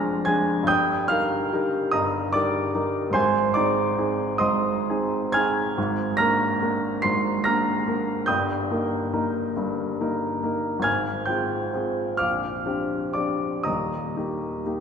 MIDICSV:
0, 0, Header, 1, 2, 480
1, 0, Start_track
1, 0, Key_signature, -3, "major"
1, 0, Tempo, 840336
1, 400, Time_signature, 6, 3, 24, 8
1, 877, Tempo, 814111
1, 2317, Tempo, 898204
1, 3277, Tempo, 837989
1, 4717, Tempo, 859599
1, 6157, Tempo, 884956
1, 6637, Tempo, 938967
1, 7117, Tempo, 985222
1, 8146, End_track
2, 0, Start_track
2, 0, Title_t, "Grand piano"
2, 0, Program_c, 0, 0
2, 0, Control_c, 0, 64, 127
2, 0, Note_on_c, 0, 29, 44
2, 0, Note_on_c, 0, 41, 42
2, 0, Note_on_c, 0, 56, 39
2, 0, Note_on_c, 0, 62, 44
2, 0, Note_on_c, 0, 68, 43
2, 0, Note_on_c, 0, 72, 56
2, 0, Note_on_c, 0, 74, 64
2, 0, Note_on_c, 0, 80, 65
2, 0, Note_on_c, 0, 82, 66
2, 0, Note_on_c, 0, 84, 66
2, 0, Note_on_c, 0, 89, 66
2, 0, Note_on_c, 0, 94, 88
2, 133, Note_off_c, 0, 89, 0
2, 134, Note_off_c, 0, 82, 0
2, 136, Note_off_c, 0, 56, 0
2, 138, Note_off_c, 0, 62, 0
2, 139, Note_off_c, 0, 68, 0
2, 143, Note_on_c, 0, 92, 71
2, 147, Note_off_c, 0, 80, 0
2, 147, Note_on_c, 0, 80, 54
2, 153, Note_off_c, 0, 94, 0
2, 154, Note_on_c, 0, 56, 41
2, 160, Note_on_c, 0, 68, 47
2, 161, Note_on_c, 0, 62, 40
2, 361, Note_on_c, 0, 31, 49
2, 364, Note_on_c, 0, 43, 51
2, 375, Note_off_c, 0, 56, 0
2, 377, Note_off_c, 0, 80, 0
2, 378, Note_off_c, 0, 62, 0
2, 378, Note_off_c, 0, 68, 0
2, 383, Note_on_c, 0, 91, 84
2, 388, Note_on_c, 0, 87, 67
2, 389, Note_on_c, 0, 79, 67
2, 392, Note_off_c, 0, 92, 0
2, 408, Control_c, 0, 64, 0
2, 410, Note_off_c, 0, 29, 0
2, 411, Note_off_c, 0, 72, 0
2, 411, Note_off_c, 0, 74, 0
2, 412, Note_off_c, 0, 41, 0
2, 414, Note_off_c, 0, 84, 0
2, 513, Control_c, 0, 64, 127
2, 613, Note_off_c, 0, 31, 0
2, 614, Note_off_c, 0, 43, 0
2, 617, Note_off_c, 0, 79, 0
2, 617, Note_off_c, 0, 87, 0
2, 617, Note_on_c, 0, 89, 82
2, 626, Note_on_c, 0, 77, 66
2, 630, Note_on_c, 0, 55, 38
2, 632, Note_off_c, 0, 91, 0
2, 634, Note_on_c, 0, 63, 40
2, 635, Note_on_c, 0, 70, 44
2, 849, Note_off_c, 0, 55, 0
2, 851, Note_off_c, 0, 63, 0
2, 851, Note_off_c, 0, 70, 0
2, 873, Note_on_c, 0, 55, 38
2, 874, Note_on_c, 0, 63, 38
2, 878, Note_on_c, 0, 70, 47
2, 1087, Note_off_c, 0, 77, 0
2, 1093, Note_off_c, 0, 55, 0
2, 1093, Note_off_c, 0, 63, 0
2, 1095, Note_off_c, 0, 70, 0
2, 1101, Note_on_c, 0, 87, 74
2, 1106, Note_off_c, 0, 89, 0
2, 1107, Note_on_c, 0, 75, 55
2, 1111, Note_on_c, 0, 82, 55
2, 1116, Note_on_c, 0, 43, 48
2, 1117, Note_on_c, 0, 31, 43
2, 1335, Note_off_c, 0, 75, 0
2, 1337, Note_off_c, 0, 82, 0
2, 1343, Note_on_c, 0, 86, 83
2, 1349, Note_off_c, 0, 43, 0
2, 1349, Note_off_c, 0, 87, 0
2, 1350, Note_off_c, 0, 31, 0
2, 1350, Note_on_c, 0, 74, 65
2, 1358, Note_on_c, 0, 55, 39
2, 1360, Note_on_c, 0, 63, 39
2, 1361, Note_on_c, 0, 70, 45
2, 1569, Note_off_c, 0, 55, 0
2, 1570, Note_off_c, 0, 63, 0
2, 1571, Note_off_c, 0, 70, 0
2, 1588, Note_on_c, 0, 55, 38
2, 1591, Note_on_c, 0, 63, 40
2, 1595, Note_on_c, 0, 70, 41
2, 1801, Note_on_c, 0, 44, 49
2, 1802, Note_off_c, 0, 74, 0
2, 1803, Note_off_c, 0, 55, 0
2, 1805, Note_off_c, 0, 63, 0
2, 1807, Note_off_c, 0, 70, 0
2, 1816, Note_on_c, 0, 84, 84
2, 1822, Note_off_c, 0, 86, 0
2, 1822, Note_on_c, 0, 72, 67
2, 1826, Note_on_c, 0, 80, 65
2, 1829, Note_on_c, 0, 32, 52
2, 1839, Control_c, 0, 64, 0
2, 1934, Control_c, 0, 64, 127
2, 2049, Note_off_c, 0, 44, 0
2, 2050, Note_off_c, 0, 72, 0
2, 2052, Note_off_c, 0, 80, 0
2, 2059, Note_on_c, 0, 86, 77
2, 2064, Note_off_c, 0, 32, 0
2, 2065, Note_off_c, 0, 84, 0
2, 2066, Note_on_c, 0, 74, 56
2, 2074, Note_on_c, 0, 63, 43
2, 2079, Note_on_c, 0, 60, 40
2, 2079, Note_on_c, 0, 68, 38
2, 2295, Note_off_c, 0, 63, 0
2, 2298, Note_off_c, 0, 60, 0
2, 2298, Note_off_c, 0, 68, 0
2, 2314, Note_on_c, 0, 60, 35
2, 2319, Note_on_c, 0, 63, 37
2, 2322, Note_on_c, 0, 68, 43
2, 2528, Note_off_c, 0, 74, 0
2, 2529, Note_off_c, 0, 60, 0
2, 2532, Note_off_c, 0, 63, 0
2, 2533, Note_off_c, 0, 68, 0
2, 2534, Note_on_c, 0, 87, 72
2, 2537, Note_on_c, 0, 75, 57
2, 2539, Note_on_c, 0, 84, 58
2, 2544, Note_on_c, 0, 44, 46
2, 2546, Note_on_c, 0, 32, 40
2, 2547, Note_off_c, 0, 86, 0
2, 2789, Note_off_c, 0, 44, 0
2, 2790, Note_off_c, 0, 32, 0
2, 2807, Note_on_c, 0, 60, 40
2, 2809, Note_on_c, 0, 68, 45
2, 2810, Note_on_c, 0, 63, 40
2, 3017, Note_off_c, 0, 75, 0
2, 3018, Note_off_c, 0, 84, 0
2, 3028, Note_off_c, 0, 60, 0
2, 3029, Note_off_c, 0, 63, 0
2, 3029, Note_off_c, 0, 68, 0
2, 3036, Note_on_c, 0, 92, 83
2, 3037, Note_off_c, 0, 87, 0
2, 3044, Note_on_c, 0, 80, 60
2, 3045, Note_on_c, 0, 89, 63
2, 3049, Note_on_c, 0, 60, 39
2, 3054, Note_on_c, 0, 63, 43
2, 3055, Note_on_c, 0, 68, 46
2, 3257, Note_off_c, 0, 60, 0
2, 3260, Note_off_c, 0, 63, 0
2, 3260, Note_off_c, 0, 68, 0
2, 3278, Note_on_c, 0, 44, 52
2, 3279, Note_on_c, 0, 32, 54
2, 3286, Control_c, 0, 64, 0
2, 3371, Control_c, 0, 64, 127
2, 3492, Note_off_c, 0, 80, 0
2, 3493, Note_off_c, 0, 89, 0
2, 3503, Note_on_c, 0, 94, 85
2, 3509, Note_off_c, 0, 44, 0
2, 3509, Note_on_c, 0, 82, 68
2, 3510, Note_off_c, 0, 32, 0
2, 3510, Note_on_c, 0, 89, 65
2, 3511, Note_off_c, 0, 92, 0
2, 3517, Note_on_c, 0, 58, 39
2, 3523, Note_on_c, 0, 62, 39
2, 3525, Note_on_c, 0, 70, 42
2, 3734, Note_off_c, 0, 58, 0
2, 3737, Note_off_c, 0, 62, 0
2, 3738, Note_off_c, 0, 70, 0
2, 3761, Note_on_c, 0, 58, 39
2, 3764, Note_on_c, 0, 70, 40
2, 3766, Note_on_c, 0, 62, 36
2, 3972, Note_off_c, 0, 82, 0
2, 3972, Note_off_c, 0, 89, 0
2, 3977, Note_off_c, 0, 58, 0
2, 3979, Note_off_c, 0, 70, 0
2, 3980, Note_off_c, 0, 62, 0
2, 3991, Note_off_c, 0, 94, 0
2, 3991, Note_on_c, 0, 96, 84
2, 3996, Note_on_c, 0, 84, 60
2, 4001, Note_on_c, 0, 32, 42
2, 4004, Note_on_c, 0, 44, 42
2, 4219, Note_off_c, 0, 84, 0
2, 4231, Note_off_c, 0, 32, 0
2, 4231, Note_on_c, 0, 94, 80
2, 4233, Note_off_c, 0, 44, 0
2, 4233, Note_off_c, 0, 96, 0
2, 4238, Note_on_c, 0, 89, 57
2, 4240, Note_on_c, 0, 82, 68
2, 4247, Note_on_c, 0, 58, 36
2, 4248, Note_on_c, 0, 62, 41
2, 4253, Note_on_c, 0, 70, 43
2, 4458, Note_off_c, 0, 58, 0
2, 4459, Note_off_c, 0, 62, 0
2, 4461, Note_off_c, 0, 70, 0
2, 4481, Note_on_c, 0, 58, 36
2, 4482, Note_on_c, 0, 62, 33
2, 4486, Note_on_c, 0, 70, 44
2, 4695, Note_off_c, 0, 89, 0
2, 4697, Note_off_c, 0, 58, 0
2, 4697, Note_off_c, 0, 82, 0
2, 4698, Note_off_c, 0, 62, 0
2, 4700, Note_off_c, 0, 70, 0
2, 4701, Note_on_c, 0, 91, 77
2, 4709, Note_on_c, 0, 79, 54
2, 4710, Note_on_c, 0, 87, 58
2, 4714, Note_on_c, 0, 43, 46
2, 4715, Note_off_c, 0, 94, 0
2, 4715, Note_on_c, 0, 31, 49
2, 4728, Control_c, 0, 64, 0
2, 4815, Control_c, 0, 64, 127
2, 4946, Note_off_c, 0, 31, 0
2, 4946, Note_off_c, 0, 43, 0
2, 4950, Note_on_c, 0, 58, 37
2, 4955, Note_on_c, 0, 63, 37
2, 4956, Note_on_c, 0, 70, 39
2, 5169, Note_off_c, 0, 58, 0
2, 5171, Note_off_c, 0, 63, 0
2, 5171, Note_off_c, 0, 70, 0
2, 5190, Note_on_c, 0, 63, 37
2, 5191, Note_on_c, 0, 58, 37
2, 5191, Note_on_c, 0, 70, 41
2, 5405, Note_off_c, 0, 79, 0
2, 5405, Note_off_c, 0, 87, 0
2, 5408, Note_off_c, 0, 58, 0
2, 5408, Note_off_c, 0, 63, 0
2, 5408, Note_off_c, 0, 70, 0
2, 5423, Note_off_c, 0, 91, 0
2, 5428, Note_on_c, 0, 43, 43
2, 5433, Note_on_c, 0, 31, 40
2, 5663, Note_off_c, 0, 43, 0
2, 5665, Note_off_c, 0, 31, 0
2, 5676, Note_on_c, 0, 58, 37
2, 5677, Note_on_c, 0, 70, 41
2, 5679, Note_on_c, 0, 63, 36
2, 5894, Note_off_c, 0, 58, 0
2, 5895, Note_off_c, 0, 70, 0
2, 5896, Note_off_c, 0, 63, 0
2, 5914, Note_on_c, 0, 58, 36
2, 5915, Note_on_c, 0, 63, 33
2, 5920, Note_on_c, 0, 70, 40
2, 6114, Note_on_c, 0, 32, 49
2, 6132, Note_on_c, 0, 92, 79
2, 6134, Note_off_c, 0, 58, 0
2, 6134, Note_off_c, 0, 63, 0
2, 6137, Note_off_c, 0, 70, 0
2, 6140, Note_on_c, 0, 80, 59
2, 6141, Note_on_c, 0, 89, 61
2, 6151, Note_on_c, 0, 44, 44
2, 6165, Control_c, 0, 64, 0
2, 6245, Control_c, 0, 64, 127
2, 6365, Note_off_c, 0, 32, 0
2, 6368, Note_off_c, 0, 80, 0
2, 6368, Note_off_c, 0, 89, 0
2, 6368, Note_on_c, 0, 91, 64
2, 6374, Note_on_c, 0, 79, 53
2, 6381, Note_off_c, 0, 92, 0
2, 6383, Note_off_c, 0, 44, 0
2, 6383, Note_on_c, 0, 65, 35
2, 6385, Note_on_c, 0, 60, 29
2, 6389, Note_on_c, 0, 68, 34
2, 6610, Note_off_c, 0, 65, 0
2, 6611, Note_off_c, 0, 60, 0
2, 6613, Note_off_c, 0, 68, 0
2, 6626, Note_on_c, 0, 60, 32
2, 6632, Note_on_c, 0, 65, 32
2, 6635, Note_on_c, 0, 68, 33
2, 6844, Note_off_c, 0, 79, 0
2, 6848, Note_off_c, 0, 60, 0
2, 6850, Note_off_c, 0, 65, 0
2, 6852, Note_off_c, 0, 68, 0
2, 6853, Note_on_c, 0, 89, 69
2, 6860, Note_on_c, 0, 86, 48
2, 6861, Note_off_c, 0, 91, 0
2, 6861, Note_on_c, 0, 77, 49
2, 6865, Note_on_c, 0, 22, 35
2, 6868, Note_on_c, 0, 34, 37
2, 6882, Control_c, 0, 64, 0
2, 6973, Control_c, 0, 64, 127
2, 7100, Note_on_c, 0, 62, 31
2, 7102, Note_on_c, 0, 60, 32
2, 7104, Note_on_c, 0, 67, 33
2, 7105, Note_off_c, 0, 22, 0
2, 7106, Note_off_c, 0, 34, 0
2, 7326, Note_off_c, 0, 62, 0
2, 7326, Note_off_c, 0, 86, 0
2, 7327, Note_off_c, 0, 60, 0
2, 7328, Note_off_c, 0, 67, 0
2, 7328, Note_off_c, 0, 77, 0
2, 7333, Note_on_c, 0, 86, 57
2, 7339, Note_on_c, 0, 74, 43
2, 7344, Note_off_c, 0, 89, 0
2, 7346, Note_on_c, 0, 60, 32
2, 7349, Note_on_c, 0, 62, 28
2, 7351, Note_on_c, 0, 67, 34
2, 7571, Note_off_c, 0, 74, 0
2, 7572, Note_off_c, 0, 60, 0
2, 7573, Note_off_c, 0, 62, 0
2, 7575, Note_off_c, 0, 67, 0
2, 7577, Note_on_c, 0, 87, 60
2, 7581, Note_on_c, 0, 82, 42
2, 7582, Note_on_c, 0, 75, 40
2, 7585, Note_off_c, 0, 86, 0
2, 7588, Note_on_c, 0, 27, 38
2, 7590, Note_on_c, 0, 39, 42
2, 7605, Control_c, 0, 64, 0
2, 7710, Control_c, 0, 64, 127
2, 7827, Note_off_c, 0, 27, 0
2, 7828, Note_off_c, 0, 39, 0
2, 7835, Note_on_c, 0, 58, 30
2, 7837, Note_on_c, 0, 63, 31
2, 7840, Note_on_c, 0, 67, 31
2, 8056, Note_off_c, 0, 58, 0
2, 8057, Note_off_c, 0, 63, 0
2, 8058, Note_off_c, 0, 67, 0
2, 8072, Note_on_c, 0, 58, 26
2, 8077, Note_on_c, 0, 63, 30
2, 8079, Note_on_c, 0, 67, 32
2, 8146, Note_off_c, 0, 58, 0
2, 8146, Note_off_c, 0, 63, 0
2, 8146, Note_off_c, 0, 67, 0
2, 8146, Note_off_c, 0, 75, 0
2, 8146, Note_off_c, 0, 82, 0
2, 8146, Note_off_c, 0, 87, 0
2, 8146, End_track
0, 0, End_of_file